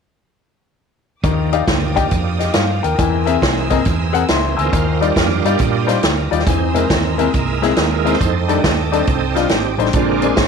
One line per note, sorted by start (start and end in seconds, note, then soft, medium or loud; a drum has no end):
1.23 1.61 D#2 medium
1.23 1.92 D#3 medium
1.23 2.96 F3 medium
1.23 2.96 A#3 medium
1.23 2.96 D4 medium
1.23 4.69 D#4 medium
1.23 2.96 G4 medium
1.23 2.97 F5 medium
1.23 2.97 G5 medium
1.23 2.97 D6 medium
1.23 2.97 D#6 medium
1.23 kick loud
1.23 closed hi-hat medium
1.53 1.60 D#4 medium
1.53 1.60 G4 medium
1.53 1.60 D5 medium
1.53 1.60 F5 medium
1.53 closed hi-hat medium
1.68 2.05 D2 medium
1.68 kick medium
1.68 snare loud
1.68 closed hi-hat medium
1.96 2.04 D#4 medium
1.96 2.04 G4 medium
1.96 2.04 D5 medium
1.96 2.04 G5 medium
1.96 kick medium
1.96 closed hi-hat medium
2.11 2.48 F2 medium
2.11 kick medium
2.11 closed hi-hat medium
2.39 2.54 G4 soft
2.39 2.54 D#5 medium
2.39 snare soft
2.39 closed hi-hat medium
2.53 2.79 G2 medium
2.53 2.81 F5 medium
2.53 snare loud
2.53 closed hi-hat medium
2.83 2.96 D#2 medium
2.83 3.25 A#4 medium
2.83 3.24 G5 medium
2.83 closed hi-hat medium
2.98 3.36 E2 medium
2.98 3.66 E3 medium
2.98 4.71 E3 medium
2.98 4.71 A#3 medium
2.98 4.71 C4 medium
2.98 4.70 G#4 medium
2.98 4.71 G#5 medium
2.98 4.71 A#5 medium
2.98 4.71 C6 medium
2.98 4.71 E6 medium
2.98 kick loud
2.98 closed hi-hat medium
3.26 3.34 C4 medium
3.26 3.34 G#4 medium
3.26 3.34 A#4 medium
3.26 3.34 E5 medium
3.26 closed hi-hat medium
3.42 3.79 C2 medium
3.42 kick medium
3.42 snare loud
3.42 closed hi-hat medium
3.70 3.78 C4 medium
3.70 3.78 G#4 medium
3.70 3.78 A#4 medium
3.70 3.78 D#5 medium
3.70 kick medium
3.70 closed hi-hat medium
3.85 4.23 E2 medium
3.85 kick medium
3.85 closed hi-hat medium
4.13 4.21 C4 medium
4.13 4.21 G#4 medium
4.13 4.21 A#4 medium
4.13 4.21 F#5 medium
4.13 closed hi-hat medium
4.28 4.53 C#2 medium
4.28 4.57 E5 medium
4.28 4.56 C6 medium
4.28 snare loud
4.28 closed hi-hat medium
4.57 4.71 D2 medium
4.57 5.01 F4 medium
4.57 5.15 A#4 medium
4.57 5.12 C5 medium
4.57 4.99 G#5 medium
4.57 4.98 E6 medium
4.57 closed hi-hat medium
4.71 5.10 D#2 medium
4.71 5.40 D#3 medium
4.71 6.44 F5 medium
4.71 6.44 G5 medium
4.71 6.45 D6 medium
4.71 6.45 D#6 medium
4.71 kick loud
4.71 closed hi-hat medium
5.01 5.88 G3 soft
5.01 5.09 G3 medium
5.01 5.45 D4 soft
5.01 5.09 D#4 medium
5.01 5.09 F4 medium
5.01 5.88 F4 medium
5.01 5.09 D5 medium
5.01 closed hi-hat medium
5.16 5.41 F2 medium
5.16 5.45 A#4 medium
5.16 kick medium
5.16 snare loud
5.16 closed hi-hat medium
5.44 5.57 G2 medium
5.44 5.53 G3 medium
5.44 5.89 D4 medium
5.44 5.53 D#4 medium
5.44 5.53 F4 medium
5.44 5.88 G4 medium
5.44 5.90 A#4 medium
5.44 5.53 D5 medium
5.44 closed hi-hat medium
5.59 5.97 A#2 medium
5.59 kick loud
5.59 closed hi-hat medium
5.87 5.95 G3 medium
5.87 6.02 G3 soft
5.87 6.02 D4 soft
5.87 5.95 D#4 medium
5.87 5.96 F4 medium
5.87 6.02 F4 soft
5.87 6.04 G4 medium
5.87 5.96 C5 medium
5.87 snare soft
5.87 closed hi-hat medium
6.03 6.27 D2 medium
6.03 6.30 A#4 medium
6.03 snare medium
6.03 closed hi-hat medium
6.31 6.44 D#2 medium
6.31 6.39 G3 medium
6.31 6.39 D#4 medium
6.31 6.39 F4 medium
6.31 6.48 G4 medium
6.31 6.39 D5 medium
6.31 closed hi-hat medium
6.39 snare soft
6.47 6.84 E2 medium
6.47 7.15 E3 medium
6.47 7.31 C4 medium
6.47 6.77 D#4 medium
6.47 6.61 G#4 medium
6.47 8.19 G#5 medium
6.47 8.19 A#5 medium
6.47 8.19 C6 medium
6.47 8.19 E6 medium
6.47 kick loud
6.47 closed hi-hat medium
6.74 6.82 G#3 medium
6.74 6.83 C4 medium
6.74 6.83 E4 medium
6.74 6.83 A#4 medium
6.74 8.11 A#4 medium
6.74 closed hi-hat medium
6.78 8.03 D#4 medium
6.90 7.27 D#2 medium
6.90 kick medium
6.90 snare loud
6.90 closed hi-hat medium
7.18 7.26 G#3 medium
7.18 8.17 G#3 soft
7.18 8.17 A#3 soft
7.18 7.26 C4 medium
7.18 7.26 E4 medium
7.18 8.17 E4 medium
7.18 7.26 A#4 medium
7.18 closed hi-hat medium
7.34 7.71 C2 medium
7.34 kick medium
7.34 closed hi-hat medium
7.62 7.70 G#3 medium
7.62 7.70 C4 medium
7.62 7.70 E4 medium
7.62 7.70 G#4 medium
7.62 snare soft
7.62 closed hi-hat medium
7.76 8.14 D#2 medium
7.76 snare loud
7.76 closed hi-hat medium
8.04 8.13 G#3 medium
8.04 8.13 C4 medium
8.04 8.89 D#4 medium
8.04 8.13 E4 medium
8.04 8.62 A4 medium
8.04 8.13 A#4 medium
8.04 8.60 C5 loud
8.04 closed hi-hat medium
8.13 snare soft
8.20 8.58 F2 medium
8.20 9.92 G5 medium
8.20 9.93 A5 medium
8.20 10.48 D6 medium
8.20 9.93 D#6 medium
8.20 kick loud
8.20 closed hi-hat medium
8.48 8.74 D#3 soft
8.48 8.56 G3 medium
8.48 8.74 G3 soft
8.48 8.74 A3 soft
8.48 8.57 D4 medium
8.48 8.74 D4 medium
8.48 8.57 D#4 medium
8.48 8.57 A4 medium
8.48 closed hi-hat medium
8.63 9.01 D#2 medium
8.63 8.91 A4 medium
8.63 kick medium
8.63 snare loud
8.63 closed hi-hat medium
8.91 9.00 G3 medium
8.91 9.75 C4 medium
8.91 9.00 D4 medium
8.91 9.75 D#4 medium
8.91 9.00 D#4 medium
8.91 9.37 A4 loud
8.91 9.00 A4 medium
8.91 closed hi-hat medium
9.07 9.45 C2 medium
9.07 kick loud
9.07 closed hi-hat medium
9.34 9.44 G3 medium
9.34 9.44 D4 medium
9.34 9.44 D#4 medium
9.34 9.51 F4 medium
9.34 9.44 F4 medium
9.34 snare soft
9.34 closed hi-hat medium
9.49 9.75 G#1 medium
9.49 9.80 G4 medium
9.49 snare medium
9.49 closed hi-hat medium
9.78 9.91 A1 medium
9.78 9.87 G3 medium
9.78 9.87 D4 medium
9.78 9.87 D#4 medium
9.78 9.90 A4 medium
9.78 9.87 C5 medium
9.78 closed hi-hat medium
9.85 snare soft
9.91 10.31 A#1 medium
9.91 10.48 A#2 medium
9.91 10.27 D3 soft
9.91 10.27 G#3 soft
9.91 9.95 C5 medium
9.91 10.48 A#5 medium
9.91 kick loud
9.91 closed hi-hat medium
9.96 10.28 C4 medium
9.96 10.48 D4 medium
9.96 10.23 F4 medium
9.96 10.24 A#4 medium
9.96 10.48 G#5 medium
9.96 10.48 C6 medium
10.22 10.30 G#3 medium
10.22 10.30 C4 medium
10.22 10.30 D4 medium
10.22 10.48 F4 medium
10.22 10.48 G#4 medium
10.22 10.31 A#4 medium
10.22 10.48 C5 medium
10.22 closed hi-hat medium
10.37 10.48 G#1 medium
10.37 kick medium
10.37 snare loud
10.37 closed hi-hat medium